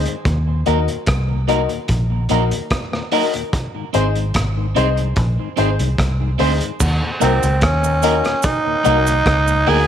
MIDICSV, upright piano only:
0, 0, Header, 1, 2, 480
1, 0, Start_track
1, 0, Tempo, 818554
1, 148, Time_signature, 4, 2, 24, 8
1, 5788, End_track
2, 0, Start_track
2, 0, Title_t, "Upright piano"
2, 0, Program_c, 0, 0
2, 388, Note_on_c, 0, 63, 91
2, 391, Note_on_c, 0, 66, 81
2, 392, Note_on_c, 0, 70, 85
2, 396, Note_on_c, 0, 75, 97
2, 502, Note_off_c, 0, 63, 0
2, 503, Note_off_c, 0, 66, 0
2, 503, Note_off_c, 0, 70, 0
2, 505, Note_off_c, 0, 75, 0
2, 870, Note_on_c, 0, 63, 89
2, 873, Note_on_c, 0, 66, 71
2, 875, Note_on_c, 0, 70, 79
2, 877, Note_on_c, 0, 75, 84
2, 983, Note_off_c, 0, 63, 0
2, 984, Note_off_c, 0, 66, 0
2, 985, Note_off_c, 0, 70, 0
2, 986, Note_off_c, 0, 75, 0
2, 1351, Note_on_c, 0, 63, 76
2, 1353, Note_on_c, 0, 66, 73
2, 1356, Note_on_c, 0, 70, 72
2, 1358, Note_on_c, 0, 75, 96
2, 1464, Note_off_c, 0, 63, 0
2, 1464, Note_off_c, 0, 66, 0
2, 1466, Note_off_c, 0, 70, 0
2, 1467, Note_off_c, 0, 75, 0
2, 1830, Note_on_c, 0, 63, 84
2, 1832, Note_on_c, 0, 66, 74
2, 1835, Note_on_c, 0, 70, 72
2, 1837, Note_on_c, 0, 75, 88
2, 1943, Note_off_c, 0, 63, 0
2, 1944, Note_off_c, 0, 66, 0
2, 1945, Note_off_c, 0, 70, 0
2, 1946, Note_off_c, 0, 75, 0
2, 1960, Note_on_c, 0, 70, 21
2, 1960, Note_on_c, 0, 75, 24
2, 2003, Note_off_c, 0, 75, 0
2, 2004, Note_off_c, 0, 70, 0
2, 2311, Note_on_c, 0, 63, 88
2, 2312, Note_on_c, 0, 68, 79
2, 2315, Note_on_c, 0, 72, 82
2, 2318, Note_on_c, 0, 75, 95
2, 2423, Note_off_c, 0, 63, 0
2, 2424, Note_off_c, 0, 68, 0
2, 2426, Note_off_c, 0, 72, 0
2, 2427, Note_off_c, 0, 75, 0
2, 2790, Note_on_c, 0, 63, 85
2, 2793, Note_on_c, 0, 68, 72
2, 2796, Note_on_c, 0, 72, 78
2, 2798, Note_on_c, 0, 75, 93
2, 2903, Note_off_c, 0, 63, 0
2, 2905, Note_off_c, 0, 68, 0
2, 2906, Note_off_c, 0, 72, 0
2, 2907, Note_off_c, 0, 75, 0
2, 3271, Note_on_c, 0, 63, 70
2, 3273, Note_on_c, 0, 68, 83
2, 3275, Note_on_c, 0, 72, 78
2, 3278, Note_on_c, 0, 75, 92
2, 3384, Note_off_c, 0, 63, 0
2, 3385, Note_off_c, 0, 68, 0
2, 3386, Note_off_c, 0, 72, 0
2, 3387, Note_off_c, 0, 75, 0
2, 3749, Note_on_c, 0, 63, 88
2, 3751, Note_on_c, 0, 68, 71
2, 3753, Note_on_c, 0, 72, 73
2, 3755, Note_on_c, 0, 75, 89
2, 3863, Note_off_c, 0, 63, 0
2, 3864, Note_off_c, 0, 68, 0
2, 3864, Note_off_c, 0, 72, 0
2, 3866, Note_off_c, 0, 75, 0
2, 4228, Note_on_c, 0, 63, 88
2, 4230, Note_on_c, 0, 66, 78
2, 4232, Note_on_c, 0, 70, 78
2, 4235, Note_on_c, 0, 75, 98
2, 4342, Note_off_c, 0, 63, 0
2, 4343, Note_off_c, 0, 66, 0
2, 4344, Note_off_c, 0, 70, 0
2, 4346, Note_off_c, 0, 75, 0
2, 4597, Note_on_c, 0, 75, 26
2, 4598, Note_on_c, 0, 70, 23
2, 4642, Note_off_c, 0, 75, 0
2, 4643, Note_off_c, 0, 70, 0
2, 4709, Note_on_c, 0, 63, 80
2, 4712, Note_on_c, 0, 66, 81
2, 4714, Note_on_c, 0, 70, 88
2, 4716, Note_on_c, 0, 75, 95
2, 4823, Note_off_c, 0, 63, 0
2, 4824, Note_off_c, 0, 66, 0
2, 4825, Note_off_c, 0, 70, 0
2, 4826, Note_off_c, 0, 75, 0
2, 5079, Note_on_c, 0, 70, 26
2, 5079, Note_on_c, 0, 75, 27
2, 5123, Note_off_c, 0, 70, 0
2, 5123, Note_off_c, 0, 75, 0
2, 5189, Note_on_c, 0, 63, 94
2, 5191, Note_on_c, 0, 66, 83
2, 5194, Note_on_c, 0, 70, 71
2, 5195, Note_on_c, 0, 75, 100
2, 5302, Note_off_c, 0, 63, 0
2, 5304, Note_off_c, 0, 66, 0
2, 5305, Note_off_c, 0, 70, 0
2, 5306, Note_off_c, 0, 75, 0
2, 5669, Note_on_c, 0, 63, 86
2, 5672, Note_on_c, 0, 66, 79
2, 5675, Note_on_c, 0, 70, 75
2, 5677, Note_on_c, 0, 75, 87
2, 5783, Note_off_c, 0, 63, 0
2, 5784, Note_off_c, 0, 66, 0
2, 5785, Note_off_c, 0, 70, 0
2, 5786, Note_off_c, 0, 75, 0
2, 5788, End_track
0, 0, End_of_file